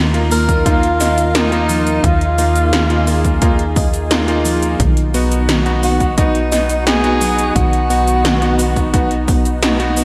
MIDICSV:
0, 0, Header, 1, 7, 480
1, 0, Start_track
1, 0, Key_signature, -6, "minor"
1, 0, Tempo, 689655
1, 1419, Time_signature, 4, 2, 24, 8
1, 6988, End_track
2, 0, Start_track
2, 0, Title_t, "Tenor saxophone"
2, 0, Program_c, 0, 66
2, 221, Note_on_c, 0, 70, 105
2, 460, Note_on_c, 0, 65, 109
2, 470, Note_off_c, 0, 70, 0
2, 940, Note_on_c, 0, 63, 93
2, 950, Note_off_c, 0, 65, 0
2, 1419, Note_on_c, 0, 65, 99
2, 1430, Note_off_c, 0, 63, 0
2, 2379, Note_off_c, 0, 65, 0
2, 4060, Note_on_c, 0, 66, 94
2, 4297, Note_on_c, 0, 63, 102
2, 4308, Note_off_c, 0, 66, 0
2, 4772, Note_off_c, 0, 63, 0
2, 4777, Note_on_c, 0, 68, 115
2, 5230, Note_off_c, 0, 68, 0
2, 5257, Note_on_c, 0, 66, 106
2, 6190, Note_off_c, 0, 66, 0
2, 6988, End_track
3, 0, Start_track
3, 0, Title_t, "Analog synth pad"
3, 0, Program_c, 1, 89
3, 0, Note_on_c, 1, 51, 86
3, 0, Note_on_c, 1, 63, 79
3, 0, Note_on_c, 1, 65, 77
3, 0, Note_on_c, 1, 70, 94
3, 1400, Note_off_c, 1, 70, 0
3, 1419, Note_on_c, 1, 68, 93
3, 3311, Note_off_c, 1, 51, 0
3, 3312, Note_off_c, 1, 65, 0
3, 3320, Note_off_c, 1, 68, 0
3, 3339, Note_on_c, 1, 66, 92
3, 3340, Note_on_c, 1, 59, 85
3, 6988, Note_off_c, 1, 59, 0
3, 6988, Note_off_c, 1, 63, 0
3, 6988, Note_off_c, 1, 66, 0
3, 6988, End_track
4, 0, Start_track
4, 0, Title_t, "Electric grand piano"
4, 0, Program_c, 2, 2
4, 0, Note_on_c, 2, 58, 88
4, 0, Note_on_c, 2, 63, 80
4, 0, Note_on_c, 2, 65, 96
4, 70, Note_off_c, 2, 58, 0
4, 70, Note_off_c, 2, 63, 0
4, 70, Note_off_c, 2, 65, 0
4, 99, Note_on_c, 2, 58, 90
4, 99, Note_on_c, 2, 63, 81
4, 99, Note_on_c, 2, 65, 99
4, 430, Note_off_c, 2, 58, 0
4, 430, Note_off_c, 2, 63, 0
4, 430, Note_off_c, 2, 65, 0
4, 459, Note_on_c, 2, 58, 88
4, 459, Note_on_c, 2, 63, 81
4, 459, Note_on_c, 2, 65, 101
4, 601, Note_off_c, 2, 58, 0
4, 601, Note_off_c, 2, 63, 0
4, 601, Note_off_c, 2, 65, 0
4, 938, Note_on_c, 2, 65, 98
4, 939, Note_on_c, 2, 58, 89
4, 939, Note_on_c, 2, 63, 82
4, 1041, Note_off_c, 2, 58, 0
4, 1041, Note_off_c, 2, 63, 0
4, 1041, Note_off_c, 2, 65, 0
4, 1058, Note_on_c, 2, 58, 101
4, 1058, Note_on_c, 2, 63, 89
4, 1058, Note_on_c, 2, 65, 109
4, 1630, Note_off_c, 2, 58, 0
4, 1630, Note_off_c, 2, 63, 0
4, 1630, Note_off_c, 2, 65, 0
4, 1659, Note_on_c, 2, 58, 87
4, 1659, Note_on_c, 2, 63, 81
4, 1659, Note_on_c, 2, 65, 98
4, 1990, Note_off_c, 2, 58, 0
4, 1990, Note_off_c, 2, 63, 0
4, 1990, Note_off_c, 2, 65, 0
4, 2019, Note_on_c, 2, 58, 89
4, 2019, Note_on_c, 2, 63, 83
4, 2019, Note_on_c, 2, 65, 99
4, 2350, Note_off_c, 2, 58, 0
4, 2350, Note_off_c, 2, 63, 0
4, 2350, Note_off_c, 2, 65, 0
4, 2379, Note_on_c, 2, 58, 88
4, 2379, Note_on_c, 2, 63, 84
4, 2379, Note_on_c, 2, 65, 101
4, 2522, Note_off_c, 2, 58, 0
4, 2522, Note_off_c, 2, 63, 0
4, 2522, Note_off_c, 2, 65, 0
4, 2860, Note_on_c, 2, 58, 92
4, 2860, Note_on_c, 2, 63, 83
4, 2860, Note_on_c, 2, 65, 99
4, 2961, Note_off_c, 2, 58, 0
4, 2961, Note_off_c, 2, 63, 0
4, 2961, Note_off_c, 2, 65, 0
4, 2979, Note_on_c, 2, 58, 101
4, 2979, Note_on_c, 2, 63, 93
4, 2979, Note_on_c, 2, 65, 110
4, 3325, Note_off_c, 2, 58, 0
4, 3325, Note_off_c, 2, 63, 0
4, 3325, Note_off_c, 2, 65, 0
4, 3579, Note_on_c, 2, 59, 89
4, 3579, Note_on_c, 2, 63, 80
4, 3579, Note_on_c, 2, 66, 97
4, 3910, Note_off_c, 2, 59, 0
4, 3910, Note_off_c, 2, 63, 0
4, 3910, Note_off_c, 2, 66, 0
4, 3940, Note_on_c, 2, 59, 91
4, 3940, Note_on_c, 2, 63, 82
4, 3940, Note_on_c, 2, 66, 97
4, 4271, Note_off_c, 2, 59, 0
4, 4271, Note_off_c, 2, 63, 0
4, 4271, Note_off_c, 2, 66, 0
4, 4299, Note_on_c, 2, 59, 92
4, 4299, Note_on_c, 2, 63, 82
4, 4299, Note_on_c, 2, 66, 100
4, 4442, Note_off_c, 2, 59, 0
4, 4442, Note_off_c, 2, 63, 0
4, 4442, Note_off_c, 2, 66, 0
4, 4779, Note_on_c, 2, 59, 90
4, 4779, Note_on_c, 2, 63, 82
4, 4779, Note_on_c, 2, 66, 98
4, 4881, Note_off_c, 2, 59, 0
4, 4881, Note_off_c, 2, 63, 0
4, 4881, Note_off_c, 2, 66, 0
4, 4898, Note_on_c, 2, 63, 91
4, 4899, Note_on_c, 2, 59, 99
4, 4899, Note_on_c, 2, 66, 111
4, 5470, Note_off_c, 2, 59, 0
4, 5470, Note_off_c, 2, 63, 0
4, 5470, Note_off_c, 2, 66, 0
4, 5499, Note_on_c, 2, 59, 86
4, 5499, Note_on_c, 2, 63, 78
4, 5499, Note_on_c, 2, 66, 96
4, 5830, Note_off_c, 2, 59, 0
4, 5830, Note_off_c, 2, 63, 0
4, 5830, Note_off_c, 2, 66, 0
4, 5859, Note_on_c, 2, 59, 86
4, 5859, Note_on_c, 2, 63, 82
4, 5859, Note_on_c, 2, 66, 98
4, 6190, Note_off_c, 2, 59, 0
4, 6190, Note_off_c, 2, 63, 0
4, 6190, Note_off_c, 2, 66, 0
4, 6219, Note_on_c, 2, 59, 89
4, 6219, Note_on_c, 2, 63, 80
4, 6219, Note_on_c, 2, 66, 99
4, 6362, Note_off_c, 2, 59, 0
4, 6362, Note_off_c, 2, 63, 0
4, 6362, Note_off_c, 2, 66, 0
4, 6699, Note_on_c, 2, 63, 82
4, 6699, Note_on_c, 2, 66, 97
4, 6700, Note_on_c, 2, 59, 88
4, 6801, Note_off_c, 2, 59, 0
4, 6801, Note_off_c, 2, 63, 0
4, 6801, Note_off_c, 2, 66, 0
4, 6819, Note_on_c, 2, 59, 101
4, 6819, Note_on_c, 2, 63, 89
4, 6819, Note_on_c, 2, 66, 108
4, 6988, Note_off_c, 2, 59, 0
4, 6988, Note_off_c, 2, 63, 0
4, 6988, Note_off_c, 2, 66, 0
4, 6988, End_track
5, 0, Start_track
5, 0, Title_t, "Synth arpeggio sound"
5, 0, Program_c, 3, 84
5, 0, Note_on_c, 3, 51, 104
5, 84, Note_off_c, 3, 51, 0
5, 219, Note_on_c, 3, 58, 100
5, 395, Note_off_c, 3, 58, 0
5, 458, Note_on_c, 3, 63, 88
5, 634, Note_off_c, 3, 63, 0
5, 699, Note_on_c, 3, 75, 74
5, 875, Note_off_c, 3, 75, 0
5, 938, Note_on_c, 3, 63, 78
5, 1114, Note_off_c, 3, 63, 0
5, 1178, Note_on_c, 3, 53, 77
5, 1354, Note_off_c, 3, 53, 0
5, 1419, Note_on_c, 3, 51, 102
5, 1594, Note_off_c, 3, 51, 0
5, 1659, Note_on_c, 3, 58, 77
5, 1834, Note_off_c, 3, 58, 0
5, 1899, Note_on_c, 3, 51, 105
5, 2004, Note_off_c, 3, 51, 0
5, 2139, Note_on_c, 3, 58, 102
5, 2314, Note_off_c, 3, 58, 0
5, 2379, Note_on_c, 3, 63, 85
5, 2555, Note_off_c, 3, 63, 0
5, 2619, Note_on_c, 3, 75, 76
5, 2795, Note_off_c, 3, 75, 0
5, 2859, Note_on_c, 3, 63, 79
5, 3034, Note_off_c, 3, 63, 0
5, 3099, Note_on_c, 3, 53, 75
5, 3274, Note_off_c, 3, 53, 0
5, 3339, Note_on_c, 3, 51, 100
5, 3514, Note_off_c, 3, 51, 0
5, 3578, Note_on_c, 3, 59, 78
5, 3754, Note_off_c, 3, 59, 0
5, 3818, Note_on_c, 3, 51, 103
5, 3924, Note_off_c, 3, 51, 0
5, 4058, Note_on_c, 3, 59, 102
5, 4234, Note_off_c, 3, 59, 0
5, 4298, Note_on_c, 3, 63, 85
5, 4474, Note_off_c, 3, 63, 0
5, 4538, Note_on_c, 3, 75, 74
5, 4714, Note_off_c, 3, 75, 0
5, 4779, Note_on_c, 3, 63, 80
5, 4955, Note_off_c, 3, 63, 0
5, 5020, Note_on_c, 3, 54, 76
5, 5195, Note_off_c, 3, 54, 0
5, 5258, Note_on_c, 3, 51, 99
5, 5434, Note_off_c, 3, 51, 0
5, 5499, Note_on_c, 3, 59, 76
5, 5674, Note_off_c, 3, 59, 0
5, 5738, Note_on_c, 3, 51, 104
5, 5844, Note_off_c, 3, 51, 0
5, 5978, Note_on_c, 3, 59, 98
5, 6154, Note_off_c, 3, 59, 0
5, 6218, Note_on_c, 3, 63, 83
5, 6394, Note_off_c, 3, 63, 0
5, 6458, Note_on_c, 3, 59, 98
5, 6634, Note_off_c, 3, 59, 0
5, 6698, Note_on_c, 3, 63, 79
5, 6874, Note_off_c, 3, 63, 0
5, 6940, Note_on_c, 3, 59, 74
5, 6988, Note_off_c, 3, 59, 0
5, 6988, End_track
6, 0, Start_track
6, 0, Title_t, "Analog synth bass"
6, 0, Program_c, 4, 38
6, 0, Note_on_c, 4, 39, 91
6, 1395, Note_off_c, 4, 39, 0
6, 1419, Note_on_c, 4, 39, 90
6, 3315, Note_off_c, 4, 39, 0
6, 3339, Note_on_c, 4, 35, 90
6, 5235, Note_off_c, 4, 35, 0
6, 5260, Note_on_c, 4, 35, 90
6, 6988, Note_off_c, 4, 35, 0
6, 6988, End_track
7, 0, Start_track
7, 0, Title_t, "Drums"
7, 98, Note_on_c, 9, 42, 42
7, 168, Note_off_c, 9, 42, 0
7, 219, Note_on_c, 9, 46, 84
7, 219, Note_on_c, 9, 69, 70
7, 289, Note_off_c, 9, 46, 0
7, 289, Note_off_c, 9, 69, 0
7, 338, Note_on_c, 9, 36, 61
7, 339, Note_on_c, 9, 42, 42
7, 339, Note_on_c, 9, 69, 39
7, 408, Note_off_c, 9, 36, 0
7, 409, Note_off_c, 9, 42, 0
7, 409, Note_off_c, 9, 69, 0
7, 458, Note_on_c, 9, 36, 115
7, 459, Note_on_c, 9, 42, 97
7, 459, Note_on_c, 9, 69, 30
7, 528, Note_off_c, 9, 36, 0
7, 529, Note_off_c, 9, 42, 0
7, 529, Note_off_c, 9, 69, 0
7, 579, Note_on_c, 9, 42, 41
7, 649, Note_off_c, 9, 42, 0
7, 699, Note_on_c, 9, 38, 37
7, 699, Note_on_c, 9, 46, 82
7, 699, Note_on_c, 9, 69, 70
7, 769, Note_off_c, 9, 38, 0
7, 769, Note_off_c, 9, 46, 0
7, 769, Note_off_c, 9, 69, 0
7, 819, Note_on_c, 9, 42, 42
7, 819, Note_on_c, 9, 69, 41
7, 889, Note_off_c, 9, 42, 0
7, 889, Note_off_c, 9, 69, 0
7, 939, Note_on_c, 9, 38, 120
7, 939, Note_on_c, 9, 42, 99
7, 939, Note_on_c, 9, 69, 30
7, 1009, Note_off_c, 9, 38, 0
7, 1009, Note_off_c, 9, 42, 0
7, 1009, Note_off_c, 9, 69, 0
7, 1059, Note_on_c, 9, 42, 41
7, 1129, Note_off_c, 9, 42, 0
7, 1179, Note_on_c, 9, 46, 83
7, 1179, Note_on_c, 9, 69, 70
7, 1248, Note_off_c, 9, 46, 0
7, 1248, Note_off_c, 9, 69, 0
7, 1299, Note_on_c, 9, 42, 41
7, 1299, Note_on_c, 9, 69, 40
7, 1369, Note_off_c, 9, 42, 0
7, 1369, Note_off_c, 9, 69, 0
7, 1419, Note_on_c, 9, 36, 126
7, 1420, Note_on_c, 9, 42, 98
7, 1420, Note_on_c, 9, 69, 29
7, 1488, Note_off_c, 9, 36, 0
7, 1489, Note_off_c, 9, 42, 0
7, 1489, Note_off_c, 9, 69, 0
7, 1540, Note_on_c, 9, 42, 43
7, 1610, Note_off_c, 9, 42, 0
7, 1660, Note_on_c, 9, 46, 78
7, 1660, Note_on_c, 9, 69, 65
7, 1729, Note_off_c, 9, 46, 0
7, 1729, Note_off_c, 9, 69, 0
7, 1779, Note_on_c, 9, 42, 45
7, 1779, Note_on_c, 9, 69, 41
7, 1849, Note_off_c, 9, 42, 0
7, 1849, Note_off_c, 9, 69, 0
7, 1899, Note_on_c, 9, 38, 127
7, 1899, Note_on_c, 9, 42, 100
7, 1899, Note_on_c, 9, 69, 29
7, 1968, Note_off_c, 9, 38, 0
7, 1968, Note_off_c, 9, 42, 0
7, 1968, Note_off_c, 9, 69, 0
7, 2019, Note_on_c, 9, 42, 42
7, 2088, Note_off_c, 9, 42, 0
7, 2138, Note_on_c, 9, 46, 81
7, 2138, Note_on_c, 9, 69, 69
7, 2208, Note_off_c, 9, 46, 0
7, 2208, Note_off_c, 9, 69, 0
7, 2259, Note_on_c, 9, 36, 65
7, 2259, Note_on_c, 9, 42, 41
7, 2259, Note_on_c, 9, 69, 39
7, 2328, Note_off_c, 9, 36, 0
7, 2329, Note_off_c, 9, 42, 0
7, 2329, Note_off_c, 9, 69, 0
7, 2378, Note_on_c, 9, 42, 97
7, 2378, Note_on_c, 9, 69, 29
7, 2379, Note_on_c, 9, 36, 123
7, 2448, Note_off_c, 9, 42, 0
7, 2448, Note_off_c, 9, 69, 0
7, 2449, Note_off_c, 9, 36, 0
7, 2499, Note_on_c, 9, 42, 42
7, 2568, Note_off_c, 9, 42, 0
7, 2619, Note_on_c, 9, 36, 113
7, 2619, Note_on_c, 9, 46, 80
7, 2619, Note_on_c, 9, 69, 66
7, 2689, Note_off_c, 9, 36, 0
7, 2689, Note_off_c, 9, 46, 0
7, 2689, Note_off_c, 9, 69, 0
7, 2740, Note_on_c, 9, 42, 43
7, 2740, Note_on_c, 9, 69, 40
7, 2809, Note_off_c, 9, 42, 0
7, 2809, Note_off_c, 9, 69, 0
7, 2859, Note_on_c, 9, 38, 122
7, 2859, Note_on_c, 9, 42, 98
7, 2859, Note_on_c, 9, 69, 29
7, 2929, Note_off_c, 9, 38, 0
7, 2929, Note_off_c, 9, 42, 0
7, 2929, Note_off_c, 9, 69, 0
7, 2979, Note_on_c, 9, 42, 43
7, 3049, Note_off_c, 9, 42, 0
7, 3099, Note_on_c, 9, 46, 82
7, 3099, Note_on_c, 9, 69, 67
7, 3169, Note_off_c, 9, 46, 0
7, 3169, Note_off_c, 9, 69, 0
7, 3219, Note_on_c, 9, 42, 42
7, 3219, Note_on_c, 9, 69, 39
7, 3289, Note_off_c, 9, 42, 0
7, 3289, Note_off_c, 9, 69, 0
7, 3339, Note_on_c, 9, 36, 126
7, 3340, Note_on_c, 9, 42, 95
7, 3340, Note_on_c, 9, 69, 28
7, 3409, Note_off_c, 9, 36, 0
7, 3409, Note_off_c, 9, 42, 0
7, 3409, Note_off_c, 9, 69, 0
7, 3459, Note_on_c, 9, 42, 43
7, 3529, Note_off_c, 9, 42, 0
7, 3580, Note_on_c, 9, 46, 75
7, 3580, Note_on_c, 9, 69, 64
7, 3649, Note_off_c, 9, 46, 0
7, 3649, Note_off_c, 9, 69, 0
7, 3700, Note_on_c, 9, 42, 43
7, 3700, Note_on_c, 9, 69, 40
7, 3769, Note_off_c, 9, 42, 0
7, 3769, Note_off_c, 9, 69, 0
7, 3820, Note_on_c, 9, 38, 127
7, 3820, Note_on_c, 9, 42, 97
7, 3820, Note_on_c, 9, 69, 29
7, 3889, Note_off_c, 9, 38, 0
7, 3889, Note_off_c, 9, 42, 0
7, 3889, Note_off_c, 9, 69, 0
7, 3939, Note_on_c, 9, 42, 40
7, 4008, Note_off_c, 9, 42, 0
7, 4059, Note_on_c, 9, 46, 78
7, 4059, Note_on_c, 9, 69, 67
7, 4129, Note_off_c, 9, 46, 0
7, 4129, Note_off_c, 9, 69, 0
7, 4179, Note_on_c, 9, 36, 64
7, 4179, Note_on_c, 9, 42, 41
7, 4179, Note_on_c, 9, 69, 38
7, 4249, Note_off_c, 9, 36, 0
7, 4249, Note_off_c, 9, 42, 0
7, 4249, Note_off_c, 9, 69, 0
7, 4299, Note_on_c, 9, 36, 127
7, 4299, Note_on_c, 9, 42, 94
7, 4299, Note_on_c, 9, 69, 28
7, 4369, Note_off_c, 9, 36, 0
7, 4369, Note_off_c, 9, 42, 0
7, 4369, Note_off_c, 9, 69, 0
7, 4419, Note_on_c, 9, 42, 41
7, 4489, Note_off_c, 9, 42, 0
7, 4540, Note_on_c, 9, 38, 39
7, 4540, Note_on_c, 9, 46, 78
7, 4540, Note_on_c, 9, 69, 66
7, 4609, Note_off_c, 9, 38, 0
7, 4609, Note_off_c, 9, 46, 0
7, 4609, Note_off_c, 9, 69, 0
7, 4660, Note_on_c, 9, 42, 42
7, 4660, Note_on_c, 9, 69, 39
7, 4729, Note_off_c, 9, 42, 0
7, 4729, Note_off_c, 9, 69, 0
7, 4780, Note_on_c, 9, 38, 123
7, 4780, Note_on_c, 9, 42, 97
7, 4780, Note_on_c, 9, 69, 28
7, 4849, Note_off_c, 9, 38, 0
7, 4849, Note_off_c, 9, 42, 0
7, 4849, Note_off_c, 9, 69, 0
7, 4900, Note_on_c, 9, 42, 41
7, 4969, Note_off_c, 9, 42, 0
7, 5020, Note_on_c, 9, 46, 76
7, 5020, Note_on_c, 9, 69, 68
7, 5090, Note_off_c, 9, 46, 0
7, 5090, Note_off_c, 9, 69, 0
7, 5140, Note_on_c, 9, 42, 41
7, 5140, Note_on_c, 9, 69, 37
7, 5210, Note_off_c, 9, 42, 0
7, 5210, Note_off_c, 9, 69, 0
7, 5259, Note_on_c, 9, 36, 125
7, 5261, Note_on_c, 9, 42, 91
7, 5261, Note_on_c, 9, 69, 29
7, 5329, Note_off_c, 9, 36, 0
7, 5330, Note_off_c, 9, 42, 0
7, 5330, Note_off_c, 9, 69, 0
7, 5381, Note_on_c, 9, 42, 41
7, 5451, Note_off_c, 9, 42, 0
7, 5501, Note_on_c, 9, 46, 75
7, 5501, Note_on_c, 9, 69, 66
7, 5570, Note_off_c, 9, 46, 0
7, 5570, Note_off_c, 9, 69, 0
7, 5621, Note_on_c, 9, 42, 42
7, 5621, Note_on_c, 9, 69, 41
7, 5690, Note_off_c, 9, 42, 0
7, 5690, Note_off_c, 9, 69, 0
7, 5741, Note_on_c, 9, 38, 126
7, 5741, Note_on_c, 9, 42, 91
7, 5741, Note_on_c, 9, 69, 30
7, 5811, Note_off_c, 9, 38, 0
7, 5811, Note_off_c, 9, 42, 0
7, 5811, Note_off_c, 9, 69, 0
7, 5860, Note_on_c, 9, 42, 39
7, 5930, Note_off_c, 9, 42, 0
7, 5980, Note_on_c, 9, 46, 74
7, 5980, Note_on_c, 9, 69, 68
7, 6049, Note_off_c, 9, 46, 0
7, 6049, Note_off_c, 9, 69, 0
7, 6099, Note_on_c, 9, 36, 65
7, 6101, Note_on_c, 9, 42, 40
7, 6101, Note_on_c, 9, 69, 39
7, 6169, Note_off_c, 9, 36, 0
7, 6170, Note_off_c, 9, 42, 0
7, 6170, Note_off_c, 9, 69, 0
7, 6219, Note_on_c, 9, 36, 122
7, 6220, Note_on_c, 9, 42, 91
7, 6220, Note_on_c, 9, 69, 28
7, 6289, Note_off_c, 9, 36, 0
7, 6290, Note_off_c, 9, 42, 0
7, 6290, Note_off_c, 9, 69, 0
7, 6340, Note_on_c, 9, 42, 40
7, 6409, Note_off_c, 9, 42, 0
7, 6459, Note_on_c, 9, 36, 114
7, 6460, Note_on_c, 9, 46, 74
7, 6460, Note_on_c, 9, 69, 68
7, 6529, Note_off_c, 9, 36, 0
7, 6529, Note_off_c, 9, 46, 0
7, 6529, Note_off_c, 9, 69, 0
7, 6580, Note_on_c, 9, 42, 40
7, 6580, Note_on_c, 9, 69, 39
7, 6649, Note_off_c, 9, 42, 0
7, 6649, Note_off_c, 9, 69, 0
7, 6699, Note_on_c, 9, 38, 122
7, 6699, Note_on_c, 9, 42, 90
7, 6699, Note_on_c, 9, 69, 29
7, 6769, Note_off_c, 9, 38, 0
7, 6769, Note_off_c, 9, 42, 0
7, 6769, Note_off_c, 9, 69, 0
7, 6819, Note_on_c, 9, 42, 39
7, 6889, Note_off_c, 9, 42, 0
7, 6939, Note_on_c, 9, 46, 76
7, 6939, Note_on_c, 9, 69, 68
7, 6988, Note_off_c, 9, 46, 0
7, 6988, Note_off_c, 9, 69, 0
7, 6988, End_track
0, 0, End_of_file